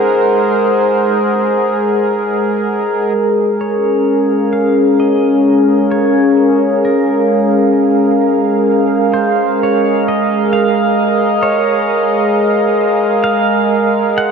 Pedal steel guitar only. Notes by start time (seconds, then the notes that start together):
3.61 C#5
4.53 F5
5.00 D#5
5.91 C#5
6.85 A#4
9.14 C5
9.63 C#5
10.08 D#5
10.53 F5
11.43 C#5
13.24 F5
14.18 F#5